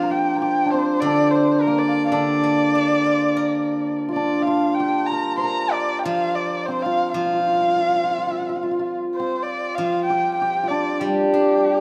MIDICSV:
0, 0, Header, 1, 4, 480
1, 0, Start_track
1, 0, Tempo, 616016
1, 1777, Time_signature, 4, 2, 24, 8
1, 2258, Tempo, 632244
1, 5138, Tempo, 615385
1, 9125, End_track
2, 0, Start_track
2, 0, Title_t, "Erhu"
2, 0, Program_c, 0, 110
2, 0, Note_on_c, 0, 77, 82
2, 86, Note_on_c, 0, 79, 82
2, 97, Note_off_c, 0, 77, 0
2, 315, Note_off_c, 0, 79, 0
2, 320, Note_on_c, 0, 79, 84
2, 552, Note_on_c, 0, 72, 76
2, 564, Note_off_c, 0, 79, 0
2, 779, Note_on_c, 0, 74, 88
2, 791, Note_off_c, 0, 72, 0
2, 1018, Note_on_c, 0, 72, 74
2, 1029, Note_off_c, 0, 74, 0
2, 1257, Note_on_c, 0, 70, 71
2, 1269, Note_off_c, 0, 72, 0
2, 1389, Note_on_c, 0, 74, 72
2, 1401, Note_off_c, 0, 70, 0
2, 1465, Note_on_c, 0, 77, 62
2, 1476, Note_off_c, 0, 74, 0
2, 1490, Note_on_c, 0, 74, 81
2, 1502, Note_off_c, 0, 77, 0
2, 1590, Note_off_c, 0, 74, 0
2, 1595, Note_on_c, 0, 77, 53
2, 1636, Note_on_c, 0, 74, 83
2, 1648, Note_off_c, 0, 77, 0
2, 3089, Note_off_c, 0, 74, 0
2, 3194, Note_on_c, 0, 74, 70
2, 3417, Note_on_c, 0, 77, 73
2, 3429, Note_off_c, 0, 74, 0
2, 3660, Note_on_c, 0, 79, 84
2, 3672, Note_off_c, 0, 77, 0
2, 3900, Note_on_c, 0, 82, 80
2, 3912, Note_off_c, 0, 79, 0
2, 4110, Note_off_c, 0, 82, 0
2, 4136, Note_on_c, 0, 84, 62
2, 4154, Note_on_c, 0, 82, 86
2, 4166, Note_off_c, 0, 84, 0
2, 4398, Note_on_c, 0, 74, 83
2, 4409, Note_off_c, 0, 82, 0
2, 4608, Note_on_c, 0, 79, 54
2, 4619, Note_off_c, 0, 74, 0
2, 4641, Note_on_c, 0, 77, 86
2, 4652, Note_off_c, 0, 79, 0
2, 4882, Note_on_c, 0, 74, 73
2, 4893, Note_off_c, 0, 77, 0
2, 5113, Note_on_c, 0, 72, 77
2, 5125, Note_off_c, 0, 74, 0
2, 5243, Note_on_c, 0, 77, 88
2, 5254, Note_off_c, 0, 72, 0
2, 5463, Note_off_c, 0, 77, 0
2, 5468, Note_on_c, 0, 77, 93
2, 6904, Note_off_c, 0, 77, 0
2, 7054, Note_on_c, 0, 72, 64
2, 7273, Note_on_c, 0, 74, 69
2, 7285, Note_off_c, 0, 72, 0
2, 7523, Note_on_c, 0, 77, 75
2, 7535, Note_off_c, 0, 74, 0
2, 7751, Note_off_c, 0, 77, 0
2, 7756, Note_on_c, 0, 79, 75
2, 7988, Note_off_c, 0, 79, 0
2, 7993, Note_on_c, 0, 79, 75
2, 8247, Note_on_c, 0, 74, 70
2, 8259, Note_off_c, 0, 79, 0
2, 8492, Note_on_c, 0, 67, 73
2, 8504, Note_off_c, 0, 74, 0
2, 9125, Note_off_c, 0, 67, 0
2, 9125, End_track
3, 0, Start_track
3, 0, Title_t, "Hammered dulcimer"
3, 0, Program_c, 1, 15
3, 0, Note_on_c, 1, 58, 57
3, 0, Note_on_c, 1, 60, 68
3, 0, Note_on_c, 1, 62, 62
3, 0, Note_on_c, 1, 65, 63
3, 25, Note_on_c, 1, 70, 52
3, 86, Note_on_c, 1, 67, 60
3, 277, Note_off_c, 1, 70, 0
3, 280, Note_on_c, 1, 70, 45
3, 314, Note_off_c, 1, 58, 0
3, 323, Note_off_c, 1, 67, 0
3, 326, Note_on_c, 1, 67, 72
3, 509, Note_off_c, 1, 62, 0
3, 512, Note_on_c, 1, 62, 48
3, 570, Note_off_c, 1, 60, 0
3, 573, Note_on_c, 1, 60, 61
3, 823, Note_off_c, 1, 62, 0
3, 826, Note_on_c, 1, 62, 71
3, 1300, Note_on_c, 1, 58, 60
3, 1656, Note_off_c, 1, 62, 0
3, 1659, Note_on_c, 1, 62, 64
3, 2472, Note_off_c, 1, 65, 0
3, 2483, Note_off_c, 1, 70, 0
3, 2758, Note_off_c, 1, 67, 0
3, 3160, Note_on_c, 1, 65, 52
3, 3213, Note_off_c, 1, 62, 0
3, 3216, Note_on_c, 1, 62, 70
3, 3405, Note_on_c, 1, 67, 44
3, 3449, Note_off_c, 1, 65, 0
3, 3452, Note_on_c, 1, 65, 67
3, 3655, Note_off_c, 1, 60, 0
3, 3699, Note_off_c, 1, 67, 0
3, 3702, Note_on_c, 1, 67, 67
3, 3942, Note_on_c, 1, 70, 72
3, 4137, Note_on_c, 1, 72, 52
3, 4182, Note_off_c, 1, 70, 0
3, 4185, Note_on_c, 1, 70, 76
3, 4586, Note_off_c, 1, 58, 0
3, 4651, Note_off_c, 1, 65, 0
3, 4654, Note_on_c, 1, 65, 59
3, 5131, Note_on_c, 1, 60, 64
3, 5264, Note_off_c, 1, 65, 0
3, 5267, Note_on_c, 1, 65, 68
3, 5502, Note_off_c, 1, 65, 0
3, 5505, Note_on_c, 1, 65, 57
3, 5577, Note_off_c, 1, 65, 0
3, 5580, Note_on_c, 1, 65, 43
3, 5635, Note_off_c, 1, 65, 0
3, 5638, Note_on_c, 1, 65, 49
3, 5685, Note_off_c, 1, 65, 0
3, 5688, Note_on_c, 1, 65, 43
3, 5745, Note_off_c, 1, 65, 0
3, 5748, Note_on_c, 1, 65, 49
3, 5790, Note_off_c, 1, 65, 0
3, 5793, Note_on_c, 1, 65, 48
3, 5846, Note_off_c, 1, 65, 0
3, 5850, Note_on_c, 1, 65, 44
3, 5907, Note_off_c, 1, 65, 0
3, 5910, Note_on_c, 1, 65, 42
3, 5970, Note_off_c, 1, 65, 0
3, 5973, Note_on_c, 1, 65, 49
3, 6011, Note_off_c, 1, 65, 0
3, 6014, Note_on_c, 1, 65, 39
3, 6068, Note_off_c, 1, 65, 0
3, 6071, Note_on_c, 1, 65, 44
3, 6073, Note_off_c, 1, 62, 0
3, 6110, Note_off_c, 1, 67, 0
3, 6122, Note_off_c, 1, 65, 0
3, 6125, Note_on_c, 1, 65, 41
3, 6169, Note_off_c, 1, 72, 0
3, 6185, Note_off_c, 1, 65, 0
3, 6188, Note_on_c, 1, 65, 47
3, 6238, Note_off_c, 1, 65, 0
3, 6242, Note_on_c, 1, 65, 43
3, 6298, Note_off_c, 1, 65, 0
3, 6301, Note_on_c, 1, 65, 47
3, 6364, Note_off_c, 1, 65, 0
3, 6367, Note_on_c, 1, 65, 44
3, 6370, Note_off_c, 1, 70, 0
3, 6400, Note_off_c, 1, 65, 0
3, 6404, Note_on_c, 1, 65, 50
3, 6469, Note_off_c, 1, 65, 0
3, 6472, Note_on_c, 1, 65, 39
3, 6539, Note_off_c, 1, 65, 0
3, 6542, Note_on_c, 1, 65, 51
3, 6592, Note_off_c, 1, 65, 0
3, 6595, Note_on_c, 1, 65, 44
3, 6646, Note_off_c, 1, 65, 0
3, 6649, Note_on_c, 1, 65, 52
3, 6710, Note_off_c, 1, 65, 0
3, 6713, Note_on_c, 1, 65, 45
3, 6775, Note_off_c, 1, 65, 0
3, 6778, Note_on_c, 1, 65, 53
3, 7088, Note_off_c, 1, 60, 0
3, 7091, Note_on_c, 1, 60, 58
3, 7552, Note_off_c, 1, 65, 0
3, 7555, Note_on_c, 1, 65, 62
3, 7797, Note_on_c, 1, 67, 68
3, 8041, Note_off_c, 1, 67, 0
3, 8044, Note_on_c, 1, 67, 68
3, 8210, Note_off_c, 1, 65, 0
3, 8213, Note_on_c, 1, 65, 50
3, 8268, Note_on_c, 1, 62, 58
3, 8511, Note_on_c, 1, 55, 47
3, 9125, Note_off_c, 1, 55, 0
3, 9125, Note_off_c, 1, 60, 0
3, 9125, Note_off_c, 1, 62, 0
3, 9125, Note_off_c, 1, 65, 0
3, 9125, Note_off_c, 1, 67, 0
3, 9125, End_track
4, 0, Start_track
4, 0, Title_t, "Guzheng"
4, 0, Program_c, 2, 107
4, 0, Note_on_c, 2, 53, 47
4, 792, Note_on_c, 2, 50, 55
4, 1285, Note_off_c, 2, 53, 0
4, 1640, Note_off_c, 2, 50, 0
4, 1650, Note_on_c, 2, 50, 49
4, 1897, Note_on_c, 2, 58, 36
4, 2143, Note_on_c, 2, 62, 39
4, 2382, Note_on_c, 2, 65, 36
4, 2613, Note_on_c, 2, 70, 42
4, 2855, Note_off_c, 2, 58, 0
4, 3095, Note_off_c, 2, 50, 0
4, 3100, Note_off_c, 2, 62, 0
4, 3345, Note_off_c, 2, 65, 0
4, 3585, Note_off_c, 2, 70, 0
4, 4654, Note_on_c, 2, 53, 57
4, 5480, Note_off_c, 2, 53, 0
4, 5490, Note_on_c, 2, 53, 53
4, 6946, Note_off_c, 2, 53, 0
4, 7546, Note_on_c, 2, 53, 50
4, 8505, Note_on_c, 2, 55, 50
4, 8761, Note_on_c, 2, 62, 44
4, 8978, Note_off_c, 2, 53, 0
4, 9125, Note_off_c, 2, 55, 0
4, 9125, Note_off_c, 2, 62, 0
4, 9125, End_track
0, 0, End_of_file